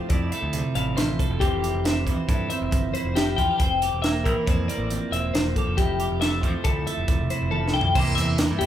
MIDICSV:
0, 0, Header, 1, 5, 480
1, 0, Start_track
1, 0, Key_signature, -1, "major"
1, 0, Tempo, 436364
1, 1547, Time_signature, 5, 2, 24, 8
1, 9527, End_track
2, 0, Start_track
2, 0, Title_t, "Clean electric guitar"
2, 0, Program_c, 0, 27
2, 97, Note_on_c, 0, 74, 69
2, 352, Note_off_c, 0, 74, 0
2, 352, Note_on_c, 0, 76, 68
2, 829, Note_off_c, 0, 76, 0
2, 830, Note_on_c, 0, 77, 62
2, 1066, Note_on_c, 0, 72, 69
2, 1068, Note_off_c, 0, 77, 0
2, 1313, Note_off_c, 0, 72, 0
2, 1313, Note_on_c, 0, 69, 74
2, 1541, Note_on_c, 0, 67, 80
2, 1550, Note_off_c, 0, 69, 0
2, 2024, Note_off_c, 0, 67, 0
2, 2039, Note_on_c, 0, 76, 77
2, 2267, Note_off_c, 0, 76, 0
2, 2267, Note_on_c, 0, 72, 65
2, 2506, Note_off_c, 0, 72, 0
2, 2506, Note_on_c, 0, 69, 78
2, 2747, Note_off_c, 0, 69, 0
2, 2749, Note_on_c, 0, 76, 68
2, 3228, Note_off_c, 0, 76, 0
2, 3230, Note_on_c, 0, 72, 69
2, 3469, Note_off_c, 0, 72, 0
2, 3470, Note_on_c, 0, 67, 71
2, 3701, Note_on_c, 0, 79, 74
2, 3709, Note_off_c, 0, 67, 0
2, 3927, Note_off_c, 0, 79, 0
2, 3940, Note_on_c, 0, 79, 81
2, 4420, Note_off_c, 0, 79, 0
2, 4425, Note_on_c, 0, 76, 83
2, 4667, Note_off_c, 0, 76, 0
2, 4667, Note_on_c, 0, 70, 65
2, 4912, Note_off_c, 0, 70, 0
2, 4912, Note_on_c, 0, 72, 77
2, 5151, Note_off_c, 0, 72, 0
2, 5151, Note_on_c, 0, 74, 62
2, 5630, Note_off_c, 0, 74, 0
2, 5637, Note_on_c, 0, 76, 74
2, 5871, Note_on_c, 0, 72, 70
2, 5873, Note_off_c, 0, 76, 0
2, 6117, Note_off_c, 0, 72, 0
2, 6117, Note_on_c, 0, 69, 76
2, 6351, Note_on_c, 0, 67, 73
2, 6353, Note_off_c, 0, 69, 0
2, 6830, Note_off_c, 0, 67, 0
2, 6831, Note_on_c, 0, 76, 83
2, 7057, Note_off_c, 0, 76, 0
2, 7057, Note_on_c, 0, 72, 59
2, 7303, Note_off_c, 0, 72, 0
2, 7305, Note_on_c, 0, 69, 77
2, 7547, Note_off_c, 0, 69, 0
2, 7554, Note_on_c, 0, 76, 64
2, 8031, Note_off_c, 0, 76, 0
2, 8034, Note_on_c, 0, 72, 72
2, 8257, Note_off_c, 0, 72, 0
2, 8262, Note_on_c, 0, 69, 70
2, 8505, Note_off_c, 0, 69, 0
2, 8510, Note_on_c, 0, 79, 74
2, 8749, Note_off_c, 0, 79, 0
2, 8749, Note_on_c, 0, 72, 91
2, 8968, Note_on_c, 0, 76, 76
2, 8988, Note_off_c, 0, 72, 0
2, 9446, Note_on_c, 0, 67, 74
2, 9457, Note_off_c, 0, 76, 0
2, 9527, Note_off_c, 0, 67, 0
2, 9527, End_track
3, 0, Start_track
3, 0, Title_t, "Clean electric guitar"
3, 0, Program_c, 1, 27
3, 0, Note_on_c, 1, 41, 64
3, 0, Note_on_c, 1, 53, 59
3, 0, Note_on_c, 1, 57, 53
3, 0, Note_on_c, 1, 64, 52
3, 0, Note_on_c, 1, 67, 58
3, 127, Note_off_c, 1, 64, 0
3, 132, Note_on_c, 1, 64, 57
3, 368, Note_off_c, 1, 57, 0
3, 373, Note_on_c, 1, 57, 60
3, 587, Note_on_c, 1, 48, 58
3, 826, Note_off_c, 1, 64, 0
3, 830, Note_on_c, 1, 64, 54
3, 1038, Note_off_c, 1, 41, 0
3, 1049, Note_on_c, 1, 41, 73
3, 1053, Note_off_c, 1, 64, 0
3, 1057, Note_on_c, 1, 64, 53
3, 1303, Note_off_c, 1, 67, 0
3, 1307, Note_on_c, 1, 69, 55
3, 1518, Note_off_c, 1, 48, 0
3, 1518, Note_off_c, 1, 69, 0
3, 1519, Note_off_c, 1, 41, 0
3, 1521, Note_off_c, 1, 53, 0
3, 1532, Note_off_c, 1, 57, 0
3, 1533, Note_on_c, 1, 41, 61
3, 1542, Note_on_c, 1, 52, 57
3, 1549, Note_on_c, 1, 60, 55
3, 1550, Note_off_c, 1, 64, 0
3, 1555, Note_on_c, 1, 64, 53
3, 1559, Note_on_c, 1, 67, 62
3, 1780, Note_off_c, 1, 67, 0
3, 1785, Note_on_c, 1, 67, 59
3, 2033, Note_off_c, 1, 60, 0
3, 2037, Note_on_c, 1, 60, 59
3, 2271, Note_off_c, 1, 52, 0
3, 2275, Note_on_c, 1, 52, 62
3, 2519, Note_off_c, 1, 64, 0
3, 2524, Note_on_c, 1, 64, 53
3, 2762, Note_off_c, 1, 60, 0
3, 2767, Note_on_c, 1, 60, 66
3, 2973, Note_off_c, 1, 41, 0
3, 2987, Note_on_c, 1, 41, 58
3, 3235, Note_off_c, 1, 64, 0
3, 3239, Note_on_c, 1, 64, 54
3, 3462, Note_off_c, 1, 41, 0
3, 3475, Note_on_c, 1, 41, 74
3, 3480, Note_off_c, 1, 64, 0
3, 3485, Note_on_c, 1, 64, 61
3, 3707, Note_off_c, 1, 67, 0
3, 3726, Note_on_c, 1, 65, 65
3, 3859, Note_off_c, 1, 65, 0
3, 3859, Note_on_c, 1, 67, 46
3, 3952, Note_off_c, 1, 41, 0
3, 3964, Note_off_c, 1, 67, 0
3, 3968, Note_off_c, 1, 64, 0
3, 3973, Note_off_c, 1, 60, 0
3, 3973, Note_on_c, 1, 60, 52
3, 4214, Note_on_c, 1, 67, 59
3, 4457, Note_on_c, 1, 58, 61
3, 4490, Note_off_c, 1, 52, 0
3, 4697, Note_on_c, 1, 52, 59
3, 4927, Note_off_c, 1, 60, 0
3, 4932, Note_on_c, 1, 60, 56
3, 5161, Note_off_c, 1, 58, 0
3, 5174, Note_on_c, 1, 58, 59
3, 5404, Note_on_c, 1, 41, 61
3, 5656, Note_off_c, 1, 60, 0
3, 5660, Note_on_c, 1, 60, 59
3, 5871, Note_off_c, 1, 41, 0
3, 5883, Note_on_c, 1, 41, 70
3, 5885, Note_off_c, 1, 60, 0
3, 5889, Note_on_c, 1, 60, 50
3, 6122, Note_off_c, 1, 67, 0
3, 6137, Note_on_c, 1, 67, 63
3, 6333, Note_off_c, 1, 58, 0
3, 6334, Note_off_c, 1, 67, 0
3, 6353, Note_off_c, 1, 41, 0
3, 6366, Note_on_c, 1, 41, 71
3, 6371, Note_off_c, 1, 60, 0
3, 6375, Note_on_c, 1, 64, 51
3, 6399, Note_off_c, 1, 52, 0
3, 6599, Note_on_c, 1, 67, 56
3, 6835, Note_on_c, 1, 57, 60
3, 7078, Note_on_c, 1, 53, 63
3, 7299, Note_off_c, 1, 64, 0
3, 7312, Note_on_c, 1, 64, 49
3, 7540, Note_off_c, 1, 57, 0
3, 7554, Note_on_c, 1, 57, 58
3, 7783, Note_on_c, 1, 48, 57
3, 8021, Note_off_c, 1, 64, 0
3, 8034, Note_on_c, 1, 64, 58
3, 8251, Note_off_c, 1, 41, 0
3, 8263, Note_off_c, 1, 64, 0
3, 8264, Note_on_c, 1, 41, 68
3, 8276, Note_on_c, 1, 64, 58
3, 8505, Note_off_c, 1, 67, 0
3, 8510, Note_on_c, 1, 69, 60
3, 8716, Note_off_c, 1, 48, 0
3, 8720, Note_off_c, 1, 69, 0
3, 8721, Note_off_c, 1, 57, 0
3, 8723, Note_off_c, 1, 53, 0
3, 8723, Note_off_c, 1, 64, 0
3, 8745, Note_on_c, 1, 48, 70
3, 8746, Note_off_c, 1, 41, 0
3, 8756, Note_on_c, 1, 52, 60
3, 8766, Note_on_c, 1, 58, 57
3, 8772, Note_on_c, 1, 64, 52
3, 8778, Note_on_c, 1, 67, 65
3, 9209, Note_off_c, 1, 52, 0
3, 9222, Note_on_c, 1, 52, 66
3, 9226, Note_off_c, 1, 48, 0
3, 9461, Note_off_c, 1, 64, 0
3, 9474, Note_on_c, 1, 64, 58
3, 9527, Note_off_c, 1, 52, 0
3, 9527, Note_off_c, 1, 58, 0
3, 9527, Note_off_c, 1, 64, 0
3, 9527, Note_off_c, 1, 67, 0
3, 9527, End_track
4, 0, Start_track
4, 0, Title_t, "Picked electric bass"
4, 0, Program_c, 2, 34
4, 111, Note_on_c, 2, 41, 88
4, 324, Note_off_c, 2, 41, 0
4, 468, Note_on_c, 2, 38, 79
4, 682, Note_off_c, 2, 38, 0
4, 828, Note_on_c, 2, 33, 77
4, 1043, Note_off_c, 2, 33, 0
4, 1072, Note_on_c, 2, 33, 79
4, 1285, Note_off_c, 2, 33, 0
4, 1429, Note_on_c, 2, 29, 78
4, 1536, Note_off_c, 2, 29, 0
4, 1909, Note_on_c, 2, 29, 84
4, 2277, Note_on_c, 2, 41, 75
4, 2294, Note_off_c, 2, 29, 0
4, 2381, Note_off_c, 2, 41, 0
4, 2521, Note_on_c, 2, 43, 77
4, 2731, Note_off_c, 2, 43, 0
4, 2878, Note_on_c, 2, 29, 78
4, 2981, Note_off_c, 2, 29, 0
4, 2999, Note_on_c, 2, 31, 87
4, 3210, Note_off_c, 2, 31, 0
4, 3355, Note_on_c, 2, 29, 83
4, 3676, Note_off_c, 2, 29, 0
4, 3723, Note_on_c, 2, 40, 84
4, 3824, Note_off_c, 2, 40, 0
4, 3961, Note_on_c, 2, 29, 103
4, 4279, Note_off_c, 2, 29, 0
4, 4315, Note_on_c, 2, 28, 81
4, 4681, Note_off_c, 2, 28, 0
4, 4681, Note_on_c, 2, 34, 85
4, 4784, Note_off_c, 2, 34, 0
4, 4926, Note_on_c, 2, 41, 88
4, 5134, Note_off_c, 2, 41, 0
4, 5259, Note_on_c, 2, 33, 80
4, 5479, Note_off_c, 2, 33, 0
4, 5630, Note_on_c, 2, 28, 76
4, 5845, Note_off_c, 2, 28, 0
4, 5872, Note_on_c, 2, 28, 76
4, 6087, Note_off_c, 2, 28, 0
4, 6240, Note_on_c, 2, 29, 72
4, 6343, Note_off_c, 2, 29, 0
4, 6360, Note_on_c, 2, 29, 93
4, 6678, Note_off_c, 2, 29, 0
4, 6716, Note_on_c, 2, 29, 79
4, 7077, Note_on_c, 2, 41, 80
4, 7093, Note_off_c, 2, 29, 0
4, 7181, Note_off_c, 2, 41, 0
4, 7315, Note_on_c, 2, 38, 84
4, 7528, Note_off_c, 2, 38, 0
4, 7673, Note_on_c, 2, 29, 79
4, 7779, Note_off_c, 2, 29, 0
4, 7789, Note_on_c, 2, 28, 84
4, 8004, Note_off_c, 2, 28, 0
4, 8156, Note_on_c, 2, 29, 79
4, 8476, Note_off_c, 2, 29, 0
4, 8507, Note_on_c, 2, 36, 81
4, 8615, Note_off_c, 2, 36, 0
4, 8755, Note_on_c, 2, 36, 92
4, 8967, Note_off_c, 2, 36, 0
4, 8999, Note_on_c, 2, 40, 92
4, 9317, Note_off_c, 2, 40, 0
4, 9361, Note_on_c, 2, 43, 78
4, 9462, Note_off_c, 2, 43, 0
4, 9469, Note_on_c, 2, 40, 94
4, 9527, Note_off_c, 2, 40, 0
4, 9527, End_track
5, 0, Start_track
5, 0, Title_t, "Drums"
5, 108, Note_on_c, 9, 42, 77
5, 111, Note_on_c, 9, 36, 106
5, 218, Note_off_c, 9, 42, 0
5, 221, Note_off_c, 9, 36, 0
5, 352, Note_on_c, 9, 42, 58
5, 462, Note_off_c, 9, 42, 0
5, 584, Note_on_c, 9, 42, 75
5, 694, Note_off_c, 9, 42, 0
5, 829, Note_on_c, 9, 42, 57
5, 939, Note_off_c, 9, 42, 0
5, 1073, Note_on_c, 9, 42, 81
5, 1080, Note_on_c, 9, 38, 96
5, 1183, Note_off_c, 9, 42, 0
5, 1190, Note_off_c, 9, 38, 0
5, 1314, Note_on_c, 9, 36, 69
5, 1321, Note_on_c, 9, 42, 53
5, 1424, Note_off_c, 9, 36, 0
5, 1431, Note_off_c, 9, 42, 0
5, 1553, Note_on_c, 9, 36, 93
5, 1561, Note_on_c, 9, 42, 72
5, 1663, Note_off_c, 9, 36, 0
5, 1671, Note_off_c, 9, 42, 0
5, 1802, Note_on_c, 9, 42, 60
5, 1912, Note_off_c, 9, 42, 0
5, 2039, Note_on_c, 9, 42, 76
5, 2045, Note_on_c, 9, 38, 98
5, 2149, Note_off_c, 9, 42, 0
5, 2155, Note_off_c, 9, 38, 0
5, 2273, Note_on_c, 9, 36, 55
5, 2280, Note_on_c, 9, 42, 51
5, 2383, Note_off_c, 9, 36, 0
5, 2390, Note_off_c, 9, 42, 0
5, 2515, Note_on_c, 9, 36, 93
5, 2519, Note_on_c, 9, 42, 75
5, 2625, Note_off_c, 9, 36, 0
5, 2629, Note_off_c, 9, 42, 0
5, 2751, Note_on_c, 9, 42, 63
5, 2861, Note_off_c, 9, 42, 0
5, 2996, Note_on_c, 9, 36, 85
5, 2997, Note_on_c, 9, 42, 82
5, 3106, Note_off_c, 9, 36, 0
5, 3107, Note_off_c, 9, 42, 0
5, 3241, Note_on_c, 9, 42, 53
5, 3351, Note_off_c, 9, 42, 0
5, 3480, Note_on_c, 9, 42, 79
5, 3486, Note_on_c, 9, 38, 104
5, 3590, Note_off_c, 9, 42, 0
5, 3596, Note_off_c, 9, 38, 0
5, 3718, Note_on_c, 9, 36, 67
5, 3724, Note_on_c, 9, 42, 55
5, 3828, Note_off_c, 9, 36, 0
5, 3834, Note_off_c, 9, 42, 0
5, 3957, Note_on_c, 9, 42, 83
5, 3958, Note_on_c, 9, 36, 98
5, 4067, Note_off_c, 9, 42, 0
5, 4068, Note_off_c, 9, 36, 0
5, 4202, Note_on_c, 9, 42, 68
5, 4312, Note_off_c, 9, 42, 0
5, 4441, Note_on_c, 9, 42, 78
5, 4448, Note_on_c, 9, 38, 99
5, 4551, Note_off_c, 9, 42, 0
5, 4558, Note_off_c, 9, 38, 0
5, 4681, Note_on_c, 9, 36, 57
5, 4686, Note_on_c, 9, 42, 50
5, 4791, Note_off_c, 9, 36, 0
5, 4796, Note_off_c, 9, 42, 0
5, 4922, Note_on_c, 9, 36, 102
5, 4924, Note_on_c, 9, 42, 75
5, 5032, Note_off_c, 9, 36, 0
5, 5034, Note_off_c, 9, 42, 0
5, 5164, Note_on_c, 9, 42, 56
5, 5274, Note_off_c, 9, 42, 0
5, 5395, Note_on_c, 9, 42, 67
5, 5505, Note_off_c, 9, 42, 0
5, 5644, Note_on_c, 9, 42, 54
5, 5754, Note_off_c, 9, 42, 0
5, 5882, Note_on_c, 9, 42, 70
5, 5888, Note_on_c, 9, 38, 110
5, 5992, Note_off_c, 9, 42, 0
5, 5998, Note_off_c, 9, 38, 0
5, 6118, Note_on_c, 9, 36, 63
5, 6119, Note_on_c, 9, 42, 53
5, 6228, Note_off_c, 9, 36, 0
5, 6229, Note_off_c, 9, 42, 0
5, 6358, Note_on_c, 9, 36, 99
5, 6363, Note_on_c, 9, 42, 80
5, 6468, Note_off_c, 9, 36, 0
5, 6473, Note_off_c, 9, 42, 0
5, 6596, Note_on_c, 9, 42, 62
5, 6706, Note_off_c, 9, 42, 0
5, 6838, Note_on_c, 9, 42, 73
5, 6845, Note_on_c, 9, 38, 93
5, 6948, Note_off_c, 9, 42, 0
5, 6955, Note_off_c, 9, 38, 0
5, 7076, Note_on_c, 9, 36, 60
5, 7082, Note_on_c, 9, 42, 47
5, 7186, Note_off_c, 9, 36, 0
5, 7192, Note_off_c, 9, 42, 0
5, 7310, Note_on_c, 9, 42, 79
5, 7314, Note_on_c, 9, 36, 101
5, 7420, Note_off_c, 9, 42, 0
5, 7424, Note_off_c, 9, 36, 0
5, 7559, Note_on_c, 9, 42, 63
5, 7669, Note_off_c, 9, 42, 0
5, 7789, Note_on_c, 9, 42, 75
5, 7790, Note_on_c, 9, 36, 89
5, 7899, Note_off_c, 9, 42, 0
5, 7900, Note_off_c, 9, 36, 0
5, 8033, Note_on_c, 9, 42, 60
5, 8143, Note_off_c, 9, 42, 0
5, 8274, Note_on_c, 9, 48, 49
5, 8384, Note_off_c, 9, 48, 0
5, 8444, Note_on_c, 9, 38, 58
5, 8554, Note_off_c, 9, 38, 0
5, 8593, Note_on_c, 9, 43, 81
5, 8703, Note_off_c, 9, 43, 0
5, 8750, Note_on_c, 9, 36, 104
5, 8752, Note_on_c, 9, 49, 103
5, 8860, Note_off_c, 9, 36, 0
5, 8862, Note_off_c, 9, 49, 0
5, 8995, Note_on_c, 9, 42, 73
5, 9105, Note_off_c, 9, 42, 0
5, 9220, Note_on_c, 9, 42, 84
5, 9227, Note_on_c, 9, 38, 95
5, 9330, Note_off_c, 9, 42, 0
5, 9337, Note_off_c, 9, 38, 0
5, 9469, Note_on_c, 9, 42, 58
5, 9527, Note_off_c, 9, 42, 0
5, 9527, End_track
0, 0, End_of_file